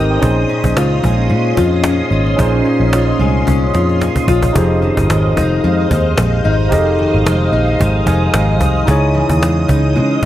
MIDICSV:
0, 0, Header, 1, 6, 480
1, 0, Start_track
1, 0, Tempo, 541028
1, 201, Time_signature, 4, 2, 24, 8
1, 9096, End_track
2, 0, Start_track
2, 0, Title_t, "String machine"
2, 0, Program_c, 0, 50
2, 0, Note_on_c, 0, 72, 80
2, 0, Note_on_c, 0, 75, 73
2, 0, Note_on_c, 0, 79, 69
2, 0, Note_on_c, 0, 87, 84
2, 164, Note_off_c, 0, 79, 0
2, 166, Note_off_c, 0, 72, 0
2, 191, Note_on_c, 0, 61, 84
2, 196, Note_on_c, 0, 84, 75
2, 4002, Note_off_c, 0, 61, 0
2, 4005, Note_off_c, 0, 84, 0
2, 4007, Note_off_c, 0, 87, 0
2, 4010, Note_off_c, 0, 75, 0
2, 4041, Note_on_c, 0, 72, 83
2, 4041, Note_on_c, 0, 75, 76
2, 4046, Note_on_c, 0, 87, 96
2, 4047, Note_on_c, 0, 77, 74
2, 7846, Note_off_c, 0, 72, 0
2, 7846, Note_off_c, 0, 75, 0
2, 7850, Note_off_c, 0, 77, 0
2, 7881, Note_on_c, 0, 75, 70
2, 7886, Note_on_c, 0, 61, 81
2, 9096, Note_off_c, 0, 61, 0
2, 9096, Note_off_c, 0, 75, 0
2, 9096, Note_off_c, 0, 87, 0
2, 9096, End_track
3, 0, Start_track
3, 0, Title_t, "Tine electric piano"
3, 0, Program_c, 1, 4
3, 0, Control_c, 1, 64, 127
3, 0, Note_on_c, 1, 60, 54
3, 0, Note_on_c, 1, 63, 48
3, 0, Note_on_c, 1, 67, 53
3, 0, Note_on_c, 1, 69, 44
3, 0, Note_on_c, 1, 70, 55
3, 0, Note_on_c, 1, 72, 58
3, 0, Note_on_c, 1, 75, 64
3, 90, Note_off_c, 1, 70, 0
3, 95, Note_on_c, 1, 79, 62
3, 98, Note_off_c, 1, 72, 0
3, 98, Note_on_c, 1, 72, 55
3, 171, Note_on_c, 1, 61, 74
3, 180, Note_off_c, 1, 63, 0
3, 190, Note_on_c, 1, 63, 66
3, 194, Note_off_c, 1, 60, 0
3, 201, Note_on_c, 1, 68, 63
3, 210, Note_off_c, 1, 72, 0
3, 211, Note_off_c, 1, 75, 0
3, 211, Control_c, 1, 64, 0
3, 214, Note_off_c, 1, 69, 0
3, 215, Note_off_c, 1, 67, 0
3, 221, Note_on_c, 1, 72, 80
3, 322, Note_off_c, 1, 79, 0
3, 388, Control_c, 1, 64, 127
3, 2071, Note_off_c, 1, 61, 0
3, 2081, Note_off_c, 1, 63, 0
3, 2086, Note_off_c, 1, 68, 0
3, 2096, Note_off_c, 1, 72, 0
3, 2098, Note_on_c, 1, 61, 73
3, 2107, Note_on_c, 1, 63, 63
3, 2124, Note_on_c, 1, 68, 58
3, 2137, Note_on_c, 1, 72, 72
3, 3995, Note_off_c, 1, 61, 0
3, 4000, Note_off_c, 1, 63, 0
3, 4008, Note_off_c, 1, 68, 0
3, 4015, Note_off_c, 1, 72, 0
3, 4019, Note_on_c, 1, 63, 69
3, 4037, Note_on_c, 1, 67, 62
3, 4049, Note_on_c, 1, 68, 66
3, 4054, Control_c, 1, 64, 0
3, 4063, Note_on_c, 1, 72, 75
3, 4231, Control_c, 1, 64, 127
3, 5916, Note_off_c, 1, 63, 0
3, 5925, Note_off_c, 1, 67, 0
3, 5931, Note_off_c, 1, 68, 0
3, 5938, Note_off_c, 1, 72, 0
3, 5939, Note_on_c, 1, 63, 73
3, 5949, Note_on_c, 1, 67, 63
3, 5966, Note_on_c, 1, 68, 59
3, 5978, Note_on_c, 1, 75, 76
3, 7156, Note_on_c, 1, 80, 69
3, 7382, Note_off_c, 1, 80, 0
3, 7399, Note_on_c, 1, 77, 66
3, 7835, Note_off_c, 1, 63, 0
3, 7840, Note_off_c, 1, 67, 0
3, 7847, Note_off_c, 1, 77, 0
3, 7848, Note_off_c, 1, 68, 0
3, 7855, Note_off_c, 1, 75, 0
3, 7859, Note_on_c, 1, 63, 71
3, 7875, Note_on_c, 1, 64, 65
3, 7890, Note_on_c, 1, 68, 66
3, 7895, Control_c, 1, 64, 0
3, 7903, Note_on_c, 1, 73, 78
3, 8053, Control_c, 1, 64, 127
3, 9096, Note_off_c, 1, 63, 0
3, 9096, Note_off_c, 1, 64, 0
3, 9096, Note_off_c, 1, 68, 0
3, 9096, Note_off_c, 1, 73, 0
3, 9096, End_track
4, 0, Start_track
4, 0, Title_t, "Steel-string acoustic guitar"
4, 0, Program_c, 2, 25
4, 0, Note_on_c, 2, 55, 56
4, 0, Note_on_c, 2, 60, 52
4, 0, Note_on_c, 2, 63, 66
4, 196, Note_on_c, 2, 46, 78
4, 255, Note_off_c, 2, 55, 0
4, 434, Note_off_c, 2, 60, 0
4, 437, Note_on_c, 2, 61, 55
4, 464, Note_off_c, 2, 63, 0
4, 684, Note_on_c, 2, 65, 71
4, 915, Note_on_c, 2, 56, 61
4, 1138, Note_off_c, 2, 61, 0
4, 1148, Note_on_c, 2, 61, 60
4, 1389, Note_off_c, 2, 65, 0
4, 1393, Note_on_c, 2, 65, 69
4, 1627, Note_off_c, 2, 61, 0
4, 1638, Note_on_c, 2, 61, 62
4, 1874, Note_off_c, 2, 65, 0
4, 1878, Note_on_c, 2, 65, 67
4, 2105, Note_off_c, 2, 46, 0
4, 2116, Note_on_c, 2, 46, 74
4, 2343, Note_off_c, 2, 61, 0
4, 2353, Note_on_c, 2, 61, 50
4, 2597, Note_off_c, 2, 65, 0
4, 2600, Note_on_c, 2, 65, 65
4, 2831, Note_off_c, 2, 56, 0
4, 2834, Note_on_c, 2, 56, 58
4, 3067, Note_off_c, 2, 61, 0
4, 3078, Note_on_c, 2, 61, 61
4, 3311, Note_off_c, 2, 65, 0
4, 3315, Note_on_c, 2, 65, 68
4, 3544, Note_off_c, 2, 61, 0
4, 3554, Note_on_c, 2, 61, 55
4, 3797, Note_off_c, 2, 65, 0
4, 3801, Note_on_c, 2, 65, 68
4, 4035, Note_off_c, 2, 46, 0
4, 4039, Note_on_c, 2, 41, 74
4, 4091, Note_off_c, 2, 61, 0
4, 4273, Note_off_c, 2, 56, 0
4, 4277, Note_on_c, 2, 51, 51
4, 4303, Note_off_c, 2, 65, 0
4, 4520, Note_on_c, 2, 56, 58
4, 4762, Note_on_c, 2, 63, 62
4, 5000, Note_off_c, 2, 56, 0
4, 5004, Note_on_c, 2, 56, 64
4, 5239, Note_off_c, 2, 63, 0
4, 5242, Note_on_c, 2, 63, 60
4, 5478, Note_off_c, 2, 56, 0
4, 5482, Note_on_c, 2, 56, 57
4, 5716, Note_off_c, 2, 63, 0
4, 5720, Note_on_c, 2, 63, 65
4, 5950, Note_off_c, 2, 41, 0
4, 5961, Note_on_c, 2, 41, 80
4, 6196, Note_off_c, 2, 51, 0
4, 6199, Note_on_c, 2, 51, 58
4, 6435, Note_off_c, 2, 56, 0
4, 6438, Note_on_c, 2, 56, 64
4, 6673, Note_off_c, 2, 63, 0
4, 6676, Note_on_c, 2, 63, 60
4, 6911, Note_off_c, 2, 56, 0
4, 6914, Note_on_c, 2, 56, 60
4, 7150, Note_off_c, 2, 63, 0
4, 7154, Note_on_c, 2, 63, 68
4, 7392, Note_off_c, 2, 56, 0
4, 7395, Note_on_c, 2, 56, 53
4, 7624, Note_off_c, 2, 63, 0
4, 7628, Note_on_c, 2, 63, 58
4, 7871, Note_on_c, 2, 49, 80
4, 7881, Note_off_c, 2, 41, 0
4, 8108, Note_off_c, 2, 51, 0
4, 8111, Note_on_c, 2, 52, 52
4, 8138, Note_off_c, 2, 63, 0
4, 8349, Note_off_c, 2, 56, 0
4, 8353, Note_on_c, 2, 56, 55
4, 8591, Note_on_c, 2, 63, 66
4, 8830, Note_off_c, 2, 56, 0
4, 8833, Note_on_c, 2, 56, 62
4, 9068, Note_off_c, 2, 63, 0
4, 9096, Note_off_c, 2, 49, 0
4, 9096, Note_off_c, 2, 52, 0
4, 9096, Note_off_c, 2, 56, 0
4, 9096, End_track
5, 0, Start_track
5, 0, Title_t, "Picked electric bass"
5, 0, Program_c, 3, 34
5, 0, Note_on_c, 3, 32, 82
5, 152, Note_off_c, 3, 32, 0
5, 200, Note_on_c, 3, 34, 92
5, 393, Note_off_c, 3, 34, 0
5, 567, Note_on_c, 3, 34, 83
5, 656, Note_off_c, 3, 34, 0
5, 678, Note_on_c, 3, 37, 86
5, 871, Note_off_c, 3, 37, 0
5, 917, Note_on_c, 3, 34, 74
5, 1157, Note_on_c, 3, 46, 102
5, 1171, Note_off_c, 3, 34, 0
5, 1351, Note_off_c, 3, 46, 0
5, 1395, Note_on_c, 3, 41, 90
5, 1782, Note_off_c, 3, 41, 0
5, 1872, Note_on_c, 3, 32, 84
5, 2068, Note_off_c, 3, 32, 0
5, 2117, Note_on_c, 3, 34, 102
5, 2311, Note_off_c, 3, 34, 0
5, 2484, Note_on_c, 3, 34, 78
5, 2766, Note_off_c, 3, 34, 0
5, 2834, Note_on_c, 3, 36, 82
5, 3030, Note_off_c, 3, 36, 0
5, 3084, Note_on_c, 3, 36, 79
5, 3275, Note_off_c, 3, 36, 0
5, 3320, Note_on_c, 3, 41, 78
5, 3619, Note_off_c, 3, 41, 0
5, 3794, Note_on_c, 3, 34, 92
5, 3990, Note_off_c, 3, 34, 0
5, 4043, Note_on_c, 3, 29, 101
5, 4340, Note_off_c, 3, 29, 0
5, 4412, Note_on_c, 3, 31, 75
5, 4499, Note_off_c, 3, 31, 0
5, 4525, Note_on_c, 3, 32, 74
5, 4716, Note_off_c, 3, 32, 0
5, 4763, Note_on_c, 3, 29, 82
5, 4955, Note_off_c, 3, 29, 0
5, 5006, Note_on_c, 3, 41, 93
5, 5197, Note_off_c, 3, 41, 0
5, 5243, Note_on_c, 3, 39, 82
5, 5435, Note_off_c, 3, 39, 0
5, 5485, Note_on_c, 3, 34, 94
5, 5676, Note_off_c, 3, 34, 0
5, 5727, Note_on_c, 3, 32, 84
5, 5961, Note_off_c, 3, 32, 0
5, 5961, Note_on_c, 3, 29, 102
5, 6259, Note_off_c, 3, 29, 0
5, 6338, Note_on_c, 3, 32, 81
5, 6423, Note_off_c, 3, 32, 0
5, 6446, Note_on_c, 3, 29, 79
5, 6637, Note_off_c, 3, 29, 0
5, 6677, Note_on_c, 3, 34, 82
5, 6871, Note_off_c, 3, 34, 0
5, 6923, Note_on_c, 3, 32, 84
5, 7115, Note_off_c, 3, 32, 0
5, 7154, Note_on_c, 3, 29, 83
5, 7349, Note_off_c, 3, 29, 0
5, 7400, Note_on_c, 3, 32, 90
5, 7637, Note_off_c, 3, 32, 0
5, 7637, Note_on_c, 3, 36, 85
5, 7831, Note_off_c, 3, 36, 0
5, 7879, Note_on_c, 3, 37, 93
5, 8178, Note_off_c, 3, 37, 0
5, 8246, Note_on_c, 3, 39, 82
5, 8336, Note_off_c, 3, 39, 0
5, 8359, Note_on_c, 3, 40, 85
5, 8552, Note_off_c, 3, 40, 0
5, 8600, Note_on_c, 3, 37, 89
5, 8840, Note_on_c, 3, 49, 94
5, 8853, Note_off_c, 3, 37, 0
5, 9032, Note_off_c, 3, 49, 0
5, 9096, End_track
6, 0, Start_track
6, 0, Title_t, "Cajon"
6, 201, Note_on_c, 9, 36, 109
6, 289, Note_off_c, 9, 36, 0
6, 332, Note_on_c, 9, 38, 18
6, 421, Note_off_c, 9, 38, 0
6, 434, Note_on_c, 9, 38, 36
6, 523, Note_off_c, 9, 38, 0
6, 567, Note_on_c, 9, 36, 88
6, 656, Note_off_c, 9, 36, 0
6, 680, Note_on_c, 9, 38, 102
6, 769, Note_off_c, 9, 38, 0
6, 917, Note_on_c, 9, 38, 34
6, 920, Note_on_c, 9, 36, 89
6, 1006, Note_off_c, 9, 38, 0
6, 1009, Note_off_c, 9, 36, 0
6, 1049, Note_on_c, 9, 38, 25
6, 1138, Note_off_c, 9, 38, 0
6, 1159, Note_on_c, 9, 38, 47
6, 1248, Note_off_c, 9, 38, 0
6, 1290, Note_on_c, 9, 38, 16
6, 1379, Note_off_c, 9, 38, 0
6, 1396, Note_on_c, 9, 36, 89
6, 1484, Note_off_c, 9, 36, 0
6, 1529, Note_on_c, 9, 38, 29
6, 1618, Note_off_c, 9, 38, 0
6, 1629, Note_on_c, 9, 38, 104
6, 1718, Note_off_c, 9, 38, 0
6, 1869, Note_on_c, 9, 38, 38
6, 1957, Note_off_c, 9, 38, 0
6, 2012, Note_on_c, 9, 38, 29
6, 2101, Note_off_c, 9, 38, 0
6, 2119, Note_on_c, 9, 36, 104
6, 2208, Note_off_c, 9, 36, 0
6, 2253, Note_on_c, 9, 38, 18
6, 2341, Note_off_c, 9, 38, 0
6, 2358, Note_on_c, 9, 38, 42
6, 2446, Note_off_c, 9, 38, 0
6, 2495, Note_on_c, 9, 38, 28
6, 2584, Note_off_c, 9, 38, 0
6, 2598, Note_on_c, 9, 38, 95
6, 2687, Note_off_c, 9, 38, 0
6, 2729, Note_on_c, 9, 38, 18
6, 2818, Note_off_c, 9, 38, 0
6, 2842, Note_on_c, 9, 38, 36
6, 2845, Note_off_c, 9, 38, 0
6, 2845, Note_on_c, 9, 38, 36
6, 2934, Note_off_c, 9, 38, 0
6, 2971, Note_on_c, 9, 38, 23
6, 3060, Note_off_c, 9, 38, 0
6, 3078, Note_on_c, 9, 38, 48
6, 3085, Note_on_c, 9, 36, 86
6, 3167, Note_off_c, 9, 38, 0
6, 3174, Note_off_c, 9, 36, 0
6, 3323, Note_on_c, 9, 38, 65
6, 3412, Note_off_c, 9, 38, 0
6, 3456, Note_on_c, 9, 38, 29
6, 3545, Note_off_c, 9, 38, 0
6, 3562, Note_on_c, 9, 38, 81
6, 3651, Note_off_c, 9, 38, 0
6, 3688, Note_on_c, 9, 36, 76
6, 3777, Note_off_c, 9, 36, 0
6, 3798, Note_on_c, 9, 36, 88
6, 3886, Note_off_c, 9, 36, 0
6, 3926, Note_on_c, 9, 36, 82
6, 4015, Note_off_c, 9, 36, 0
6, 4042, Note_on_c, 9, 36, 112
6, 4131, Note_off_c, 9, 36, 0
6, 4173, Note_on_c, 9, 38, 15
6, 4261, Note_off_c, 9, 38, 0
6, 4279, Note_on_c, 9, 38, 40
6, 4368, Note_off_c, 9, 38, 0
6, 4412, Note_on_c, 9, 36, 88
6, 4501, Note_off_c, 9, 36, 0
6, 4525, Note_on_c, 9, 38, 92
6, 4613, Note_off_c, 9, 38, 0
6, 4763, Note_on_c, 9, 38, 35
6, 4766, Note_on_c, 9, 36, 92
6, 4852, Note_off_c, 9, 38, 0
6, 4854, Note_off_c, 9, 36, 0
6, 4893, Note_on_c, 9, 38, 23
6, 4982, Note_off_c, 9, 38, 0
6, 5011, Note_on_c, 9, 38, 45
6, 5099, Note_off_c, 9, 38, 0
6, 5140, Note_on_c, 9, 38, 16
6, 5229, Note_off_c, 9, 38, 0
6, 5243, Note_on_c, 9, 36, 85
6, 5331, Note_off_c, 9, 36, 0
6, 5381, Note_on_c, 9, 38, 27
6, 5469, Note_off_c, 9, 38, 0
6, 5478, Note_on_c, 9, 38, 105
6, 5567, Note_off_c, 9, 38, 0
6, 5718, Note_on_c, 9, 38, 37
6, 5807, Note_off_c, 9, 38, 0
6, 5857, Note_on_c, 9, 38, 28
6, 5946, Note_off_c, 9, 38, 0
6, 5963, Note_on_c, 9, 36, 95
6, 6051, Note_off_c, 9, 36, 0
6, 6199, Note_on_c, 9, 38, 42
6, 6287, Note_off_c, 9, 38, 0
6, 6339, Note_on_c, 9, 38, 28
6, 6427, Note_off_c, 9, 38, 0
6, 6446, Note_on_c, 9, 38, 109
6, 6534, Note_off_c, 9, 38, 0
6, 6685, Note_on_c, 9, 38, 32
6, 6688, Note_off_c, 9, 38, 0
6, 6688, Note_on_c, 9, 38, 38
6, 6777, Note_off_c, 9, 38, 0
6, 6811, Note_on_c, 9, 38, 27
6, 6899, Note_off_c, 9, 38, 0
6, 6926, Note_on_c, 9, 36, 83
6, 7015, Note_off_c, 9, 36, 0
6, 7052, Note_on_c, 9, 38, 15
6, 7141, Note_off_c, 9, 38, 0
6, 7157, Note_on_c, 9, 36, 82
6, 7246, Note_off_c, 9, 36, 0
6, 7297, Note_on_c, 9, 38, 29
6, 7385, Note_off_c, 9, 38, 0
6, 7396, Note_on_c, 9, 38, 100
6, 7485, Note_off_c, 9, 38, 0
6, 7636, Note_on_c, 9, 36, 82
6, 7725, Note_off_c, 9, 36, 0
6, 7774, Note_on_c, 9, 38, 30
6, 7863, Note_off_c, 9, 38, 0
6, 7879, Note_on_c, 9, 36, 101
6, 7968, Note_off_c, 9, 36, 0
6, 8015, Note_on_c, 9, 38, 18
6, 8104, Note_off_c, 9, 38, 0
6, 8116, Note_on_c, 9, 38, 41
6, 8204, Note_off_c, 9, 38, 0
6, 8247, Note_on_c, 9, 36, 83
6, 8335, Note_off_c, 9, 36, 0
6, 8363, Note_on_c, 9, 38, 95
6, 8452, Note_off_c, 9, 38, 0
6, 8597, Note_on_c, 9, 38, 38
6, 8598, Note_on_c, 9, 36, 86
6, 8686, Note_off_c, 9, 38, 0
6, 8687, Note_off_c, 9, 36, 0
6, 8838, Note_on_c, 9, 38, 44
6, 8926, Note_off_c, 9, 38, 0
6, 8974, Note_on_c, 9, 38, 16
6, 9063, Note_off_c, 9, 38, 0
6, 9096, End_track
0, 0, End_of_file